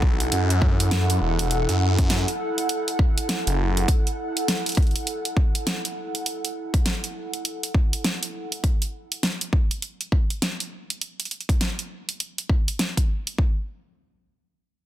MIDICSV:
0, 0, Header, 1, 4, 480
1, 0, Start_track
1, 0, Key_signature, 3, "minor"
1, 0, Tempo, 594059
1, 1215, Time_signature, 4, 2, 24, 8
1, 12006, End_track
2, 0, Start_track
2, 0, Title_t, "Analog synth pad"
2, 0, Program_c, 0, 89
2, 0, Note_on_c, 0, 64, 77
2, 0, Note_on_c, 0, 69, 74
2, 0, Note_on_c, 0, 78, 94
2, 6978, Note_off_c, 0, 69, 0
2, 6980, Note_off_c, 0, 64, 0
2, 6981, Note_off_c, 0, 78, 0
2, 12006, End_track
3, 0, Start_track
3, 0, Title_t, "Detuned saw bass"
3, 0, Program_c, 1, 39
3, 0, Note_on_c, 1, 35, 96
3, 243, Note_off_c, 1, 35, 0
3, 261, Note_on_c, 1, 42, 98
3, 963, Note_off_c, 1, 42, 0
3, 978, Note_on_c, 1, 28, 95
3, 1340, Note_off_c, 1, 28, 0
3, 1364, Note_on_c, 1, 42, 95
3, 1820, Note_off_c, 1, 42, 0
3, 2803, Note_on_c, 1, 30, 94
3, 3121, Note_off_c, 1, 30, 0
3, 12006, End_track
4, 0, Start_track
4, 0, Title_t, "Drums"
4, 18, Note_on_c, 9, 36, 108
4, 99, Note_off_c, 9, 36, 0
4, 164, Note_on_c, 9, 42, 53
4, 244, Note_off_c, 9, 42, 0
4, 258, Note_on_c, 9, 42, 64
4, 338, Note_off_c, 9, 42, 0
4, 407, Note_on_c, 9, 42, 38
4, 488, Note_off_c, 9, 42, 0
4, 499, Note_on_c, 9, 36, 107
4, 579, Note_off_c, 9, 36, 0
4, 647, Note_on_c, 9, 42, 53
4, 728, Note_off_c, 9, 42, 0
4, 738, Note_on_c, 9, 38, 120
4, 738, Note_on_c, 9, 42, 64
4, 819, Note_off_c, 9, 38, 0
4, 819, Note_off_c, 9, 42, 0
4, 887, Note_on_c, 9, 42, 36
4, 968, Note_off_c, 9, 42, 0
4, 1125, Note_on_c, 9, 42, 53
4, 1206, Note_off_c, 9, 42, 0
4, 1218, Note_on_c, 9, 42, 65
4, 1299, Note_off_c, 9, 42, 0
4, 1364, Note_on_c, 9, 42, 34
4, 1445, Note_off_c, 9, 42, 0
4, 1604, Note_on_c, 9, 42, 51
4, 1605, Note_on_c, 9, 36, 109
4, 1685, Note_off_c, 9, 36, 0
4, 1685, Note_off_c, 9, 42, 0
4, 1696, Note_on_c, 9, 38, 124
4, 1696, Note_on_c, 9, 42, 65
4, 1777, Note_off_c, 9, 38, 0
4, 1777, Note_off_c, 9, 42, 0
4, 1843, Note_on_c, 9, 42, 36
4, 1924, Note_off_c, 9, 42, 0
4, 2084, Note_on_c, 9, 42, 49
4, 2165, Note_off_c, 9, 42, 0
4, 2176, Note_on_c, 9, 42, 62
4, 2257, Note_off_c, 9, 42, 0
4, 2326, Note_on_c, 9, 42, 37
4, 2407, Note_off_c, 9, 42, 0
4, 2417, Note_on_c, 9, 36, 104
4, 2498, Note_off_c, 9, 36, 0
4, 2566, Note_on_c, 9, 42, 53
4, 2647, Note_off_c, 9, 42, 0
4, 2659, Note_on_c, 9, 38, 115
4, 2659, Note_on_c, 9, 42, 61
4, 2739, Note_off_c, 9, 38, 0
4, 2739, Note_off_c, 9, 42, 0
4, 2805, Note_on_c, 9, 42, 34
4, 2886, Note_off_c, 9, 42, 0
4, 3048, Note_on_c, 9, 42, 51
4, 3128, Note_off_c, 9, 42, 0
4, 3137, Note_on_c, 9, 36, 117
4, 3138, Note_on_c, 9, 42, 66
4, 3217, Note_off_c, 9, 36, 0
4, 3219, Note_off_c, 9, 42, 0
4, 3287, Note_on_c, 9, 42, 32
4, 3368, Note_off_c, 9, 42, 0
4, 3529, Note_on_c, 9, 42, 51
4, 3610, Note_off_c, 9, 42, 0
4, 3623, Note_on_c, 9, 38, 119
4, 3623, Note_on_c, 9, 42, 62
4, 3703, Note_off_c, 9, 38, 0
4, 3703, Note_off_c, 9, 42, 0
4, 3768, Note_on_c, 9, 42, 31
4, 3790, Note_off_c, 9, 42, 0
4, 3790, Note_on_c, 9, 42, 26
4, 3837, Note_off_c, 9, 42, 0
4, 3837, Note_on_c, 9, 42, 18
4, 3856, Note_on_c, 9, 36, 100
4, 3859, Note_off_c, 9, 42, 0
4, 3859, Note_on_c, 9, 42, 14
4, 3898, Note_off_c, 9, 42, 0
4, 3898, Note_on_c, 9, 42, 12
4, 3933, Note_off_c, 9, 42, 0
4, 3933, Note_on_c, 9, 42, 10
4, 3937, Note_off_c, 9, 36, 0
4, 3967, Note_off_c, 9, 42, 0
4, 3967, Note_on_c, 9, 42, 7
4, 4004, Note_off_c, 9, 42, 0
4, 4004, Note_on_c, 9, 42, 50
4, 4085, Note_off_c, 9, 42, 0
4, 4096, Note_on_c, 9, 42, 59
4, 4176, Note_off_c, 9, 42, 0
4, 4244, Note_on_c, 9, 42, 35
4, 4325, Note_off_c, 9, 42, 0
4, 4336, Note_on_c, 9, 36, 101
4, 4417, Note_off_c, 9, 36, 0
4, 4484, Note_on_c, 9, 42, 50
4, 4565, Note_off_c, 9, 42, 0
4, 4579, Note_on_c, 9, 38, 114
4, 4579, Note_on_c, 9, 42, 58
4, 4660, Note_off_c, 9, 38, 0
4, 4660, Note_off_c, 9, 42, 0
4, 4727, Note_on_c, 9, 42, 34
4, 4808, Note_off_c, 9, 42, 0
4, 4968, Note_on_c, 9, 42, 49
4, 5049, Note_off_c, 9, 42, 0
4, 5059, Note_on_c, 9, 42, 63
4, 5140, Note_off_c, 9, 42, 0
4, 5208, Note_on_c, 9, 42, 35
4, 5289, Note_off_c, 9, 42, 0
4, 5444, Note_on_c, 9, 36, 100
4, 5445, Note_on_c, 9, 42, 49
4, 5525, Note_off_c, 9, 36, 0
4, 5526, Note_off_c, 9, 42, 0
4, 5540, Note_on_c, 9, 38, 107
4, 5540, Note_on_c, 9, 42, 60
4, 5621, Note_off_c, 9, 38, 0
4, 5621, Note_off_c, 9, 42, 0
4, 5687, Note_on_c, 9, 42, 33
4, 5768, Note_off_c, 9, 42, 0
4, 5927, Note_on_c, 9, 42, 47
4, 6008, Note_off_c, 9, 42, 0
4, 6019, Note_on_c, 9, 42, 58
4, 6100, Note_off_c, 9, 42, 0
4, 6168, Note_on_c, 9, 42, 35
4, 6249, Note_off_c, 9, 42, 0
4, 6258, Note_on_c, 9, 36, 98
4, 6339, Note_off_c, 9, 36, 0
4, 6408, Note_on_c, 9, 42, 50
4, 6489, Note_off_c, 9, 42, 0
4, 6500, Note_on_c, 9, 38, 112
4, 6500, Note_on_c, 9, 42, 60
4, 6581, Note_off_c, 9, 38, 0
4, 6581, Note_off_c, 9, 42, 0
4, 6647, Note_on_c, 9, 42, 33
4, 6728, Note_off_c, 9, 42, 0
4, 6884, Note_on_c, 9, 42, 49
4, 6965, Note_off_c, 9, 42, 0
4, 6979, Note_on_c, 9, 36, 107
4, 6979, Note_on_c, 9, 42, 64
4, 7059, Note_off_c, 9, 36, 0
4, 7060, Note_off_c, 9, 42, 0
4, 7125, Note_on_c, 9, 42, 33
4, 7206, Note_off_c, 9, 42, 0
4, 7367, Note_on_c, 9, 42, 49
4, 7447, Note_off_c, 9, 42, 0
4, 7459, Note_on_c, 9, 38, 112
4, 7459, Note_on_c, 9, 42, 63
4, 7540, Note_off_c, 9, 38, 0
4, 7540, Note_off_c, 9, 42, 0
4, 7605, Note_on_c, 9, 42, 33
4, 7686, Note_off_c, 9, 42, 0
4, 7698, Note_on_c, 9, 36, 96
4, 7779, Note_off_c, 9, 36, 0
4, 7846, Note_on_c, 9, 42, 48
4, 7927, Note_off_c, 9, 42, 0
4, 7937, Note_on_c, 9, 42, 59
4, 8018, Note_off_c, 9, 42, 0
4, 8085, Note_on_c, 9, 42, 35
4, 8166, Note_off_c, 9, 42, 0
4, 8178, Note_on_c, 9, 36, 92
4, 8259, Note_off_c, 9, 36, 0
4, 8326, Note_on_c, 9, 42, 50
4, 8406, Note_off_c, 9, 42, 0
4, 8420, Note_on_c, 9, 38, 107
4, 8420, Note_on_c, 9, 42, 58
4, 8501, Note_off_c, 9, 38, 0
4, 8501, Note_off_c, 9, 42, 0
4, 8567, Note_on_c, 9, 42, 34
4, 8648, Note_off_c, 9, 42, 0
4, 8809, Note_on_c, 9, 42, 49
4, 8890, Note_off_c, 9, 42, 0
4, 8900, Note_on_c, 9, 42, 65
4, 8980, Note_off_c, 9, 42, 0
4, 9047, Note_on_c, 9, 42, 33
4, 9093, Note_off_c, 9, 42, 0
4, 9093, Note_on_c, 9, 42, 27
4, 9140, Note_off_c, 9, 42, 0
4, 9140, Note_on_c, 9, 42, 23
4, 9215, Note_off_c, 9, 42, 0
4, 9215, Note_on_c, 9, 42, 19
4, 9284, Note_on_c, 9, 36, 98
4, 9288, Note_off_c, 9, 42, 0
4, 9288, Note_on_c, 9, 42, 50
4, 9365, Note_off_c, 9, 36, 0
4, 9369, Note_off_c, 9, 42, 0
4, 9380, Note_on_c, 9, 38, 110
4, 9380, Note_on_c, 9, 42, 64
4, 9460, Note_off_c, 9, 38, 0
4, 9460, Note_off_c, 9, 42, 0
4, 9526, Note_on_c, 9, 42, 36
4, 9606, Note_off_c, 9, 42, 0
4, 9766, Note_on_c, 9, 42, 50
4, 9847, Note_off_c, 9, 42, 0
4, 9859, Note_on_c, 9, 42, 60
4, 9940, Note_off_c, 9, 42, 0
4, 10006, Note_on_c, 9, 42, 36
4, 10086, Note_off_c, 9, 42, 0
4, 10096, Note_on_c, 9, 36, 96
4, 10177, Note_off_c, 9, 36, 0
4, 10246, Note_on_c, 9, 42, 51
4, 10327, Note_off_c, 9, 42, 0
4, 10337, Note_on_c, 9, 38, 104
4, 10337, Note_on_c, 9, 42, 65
4, 10417, Note_off_c, 9, 38, 0
4, 10417, Note_off_c, 9, 42, 0
4, 10483, Note_on_c, 9, 36, 55
4, 10484, Note_on_c, 9, 42, 35
4, 10564, Note_off_c, 9, 36, 0
4, 10565, Note_off_c, 9, 42, 0
4, 10723, Note_on_c, 9, 42, 51
4, 10803, Note_off_c, 9, 42, 0
4, 10815, Note_on_c, 9, 36, 109
4, 10896, Note_off_c, 9, 36, 0
4, 12006, End_track
0, 0, End_of_file